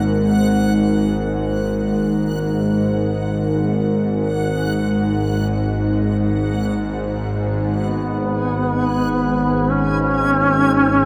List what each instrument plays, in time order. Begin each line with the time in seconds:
Already playing: synth drone G#1 G#2, ambient pad G#3 D#4 A#4, synth texture F#5
7.74 synth drone G#1 G#2, duduk B3
7.78 synth texture G#5
9.70 duduk C#4